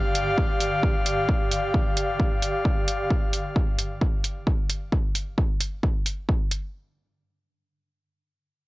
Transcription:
0.00 3.15 G2 medium
0.00 3.15 D3 medium
0.00 3.10 G4 medium
0.00 3.11 D5 medium
0.00 3.11 F5 medium
0.15 open hi-hat loud
0.38 kick loud
0.60 open hi-hat loud
0.83 kick loud
1.06 open hi-hat loud
1.29 kick loud
1.51 open hi-hat loud
1.74 kick loud
1.97 open hi-hat loud
2.20 kick loud
2.42 open hi-hat medium
2.65 kick loud
2.88 open hi-hat loud
3.10 kick loud
3.33 open hi-hat medium
3.56 kick loud
3.79 open hi-hat loud
4.01 kick loud
4.24 open hi-hat medium
4.47 kick loud
4.70 open hi-hat medium
4.92 kick loud
5.15 open hi-hat medium
5.38 kick loud
5.60 open hi-hat loud
5.83 kick loud
6.06 open hi-hat loud
6.29 kick loud
6.51 open hi-hat loud

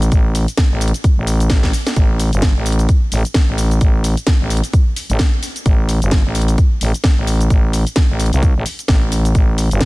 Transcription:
0.00 0.10 A1 loud
0.00 closed hi-hat medium
0.00 cabasa soft
0.12 0.46 A1 loud
0.12 kick loud
0.12 closed hi-hat medium
0.12 cabasa soft
0.35 open hi-hat loud
0.35 cabasa medium
0.48 closed hi-hat medium
0.48 cabasa soft
0.57 kick loud
0.57 snare loud
0.57 closed hi-hat medium
0.57 cabasa soft
0.71 0.92 A1 loud
0.81 open hi-hat loud
0.81 cabasa medium
0.88 closed hi-hat medium
0.94 closed hi-hat medium
0.94 cabasa soft
1.04 kick loud
1.04 closed hi-hat medium
1.04 cabasa soft
1.17 1.49 A1 loud
1.27 open hi-hat loud
1.27 cabasa medium
1.40 closed hi-hat medium
1.40 cabasa soft
1.50 1.72 A1 loud
1.50 kick loud
1.50 snare loud
1.50 closed hi-hat medium
1.50 cabasa soft
1.63 kick medium
1.63 snare medium
1.73 open hi-hat loud
1.73 cabasa medium
1.87 snare loud
1.87 closed hi-hat medium
1.87 cabasa soft
1.96 2.31 A1 loud
1.96 kick loud
1.96 closed hi-hat medium
1.96 cabasa soft
2.20 open hi-hat loud
2.20 cabasa medium
2.33 2.54 G1 loud
2.33 closed hi-hat medium
2.33 cabasa soft
2.42 kick loud
2.42 snare loud
2.42 closed hi-hat medium
2.42 cabasa soft
2.56 2.87 A1 loud
2.66 open hi-hat loud
2.66 cabasa medium
2.72 closed hi-hat medium
2.79 closed hi-hat medium
2.79 cabasa soft
2.89 kick loud
2.89 closed hi-hat medium
2.89 cabasa soft
3.12 3.23 A1 loud
3.12 open hi-hat loud
3.12 cabasa medium
3.25 closed hi-hat medium
3.25 cabasa soft
3.34 kick loud
3.34 snare loud
3.34 closed hi-hat medium
3.34 cabasa soft
3.48 3.80 A1 loud
3.58 open hi-hat loud
3.58 cabasa medium
3.71 closed hi-hat medium
3.71 cabasa soft
3.81 4.15 A1 loud
3.81 kick loud
3.81 closed hi-hat medium
3.81 cabasa soft
4.04 open hi-hat loud
4.04 cabasa medium
4.17 closed hi-hat medium
4.17 cabasa soft
4.27 kick loud
4.27 snare loud
4.27 closed hi-hat medium
4.27 cabasa soft
4.40 4.61 A1 medium
4.50 open hi-hat loud
4.50 cabasa medium
4.57 closed hi-hat medium
4.64 closed hi-hat medium
4.64 cabasa soft
4.73 kick loud
4.73 closed hi-hat medium
4.73 cabasa soft
4.96 open hi-hat loud
4.96 cabasa medium
5.10 5.18 A1 loud
5.10 closed hi-hat medium
5.10 cabasa soft
5.19 kick loud
5.19 snare loud
5.19 closed hi-hat medium
5.19 cabasa soft
5.43 open hi-hat loud
5.43 cabasa medium
5.56 closed hi-hat medium
5.56 cabasa soft
5.66 6.00 A1 loud
5.66 kick loud
5.66 closed hi-hat medium
5.66 cabasa soft
5.89 open hi-hat loud
5.89 cabasa medium
6.02 6.23 G1 loud
6.02 closed hi-hat medium
6.02 cabasa soft
6.11 kick loud
6.11 snare loud
6.11 closed hi-hat medium
6.11 cabasa soft
6.25 6.56 A1 loud
6.35 open hi-hat loud
6.35 cabasa medium
6.42 closed hi-hat medium
6.48 closed hi-hat medium
6.48 cabasa soft
6.58 kick loud
6.58 closed hi-hat medium
6.58 cabasa soft
6.81 6.92 A1 loud
6.81 open hi-hat loud
6.81 cabasa medium
6.94 closed hi-hat medium
6.94 cabasa soft
7.04 kick loud
7.04 snare loud
7.04 closed hi-hat medium
7.04 cabasa soft
7.18 7.49 A1 loud
7.27 open hi-hat loud
7.27 cabasa medium
7.41 closed hi-hat medium
7.41 cabasa soft
7.50 7.85 A1 loud
7.50 kick loud
7.50 closed hi-hat medium
7.50 cabasa soft
7.73 open hi-hat loud
7.73 cabasa medium
7.87 closed hi-hat medium
7.87 cabasa soft
7.96 kick loud
7.96 snare loud
7.96 closed hi-hat medium
7.96 cabasa soft
8.10 8.31 A1 loud
8.20 open hi-hat loud
8.20 cabasa medium
8.26 closed hi-hat medium
8.33 8.54 C2 loud
8.33 closed hi-hat medium
8.33 cabasa soft
8.43 kick loud
8.43 closed hi-hat medium
8.43 cabasa soft
8.56 8.64 A1 loud
8.66 open hi-hat loud
8.66 cabasa medium
8.79 closed hi-hat medium
8.79 cabasa soft
8.88 9.33 A1 loud
8.88 kick loud
8.88 snare loud
8.88 closed hi-hat medium
8.88 cabasa soft
9.12 open hi-hat loud
9.12 cabasa medium
9.25 closed hi-hat medium
9.25 cabasa soft
9.35 9.69 A1 loud
9.35 kick loud
9.35 closed hi-hat medium
9.35 cabasa soft
9.58 open hi-hat loud
9.58 cabasa medium
9.71 9.85 G1 loud
9.71 closed hi-hat medium
9.71 cabasa soft
9.81 kick loud
9.81 snare loud
9.81 closed hi-hat medium
9.81 cabasa soft

